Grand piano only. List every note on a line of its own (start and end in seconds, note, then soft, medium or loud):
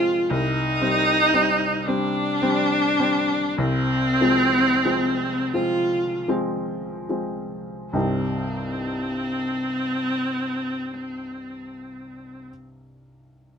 0.00 0.34 F3 medium
0.00 0.33 G#3 medium
0.00 0.34 C4 medium
0.30 0.80 C2 medium
0.81 1.29 G3 medium
0.81 1.30 C4 medium
1.33 1.82 G3 medium
1.33 1.83 C4 medium
1.88 2.37 G3 medium
1.88 2.38 C4 medium
2.42 2.94 G3 medium
2.42 2.95 C4 medium
2.99 3.54 G3 medium
2.99 3.54 C4 medium
3.58 4.18 C2 medium
4.21 4.81 F3 medium
4.21 4.81 G#3 medium
4.21 4.81 C4 medium
4.85 5.50 F3 medium
4.85 5.50 G#3 medium
4.85 5.50 C4 medium
5.54 6.24 F3 medium
5.54 6.24 G#3 medium
5.54 6.24 C4 medium
6.28 7.05 F3 medium
6.28 7.06 G#3 medium
6.28 7.06 C4 medium
7.09 7.89 F3 medium
7.09 7.89 G#3 medium
7.09 7.90 C4 medium
7.93 12.48 C2 medium
7.93 12.49 G2 medium
7.93 12.49 G3 medium
7.93 12.49 C4 soft
7.93 12.49 D#4 medium
7.93 12.50 G4 medium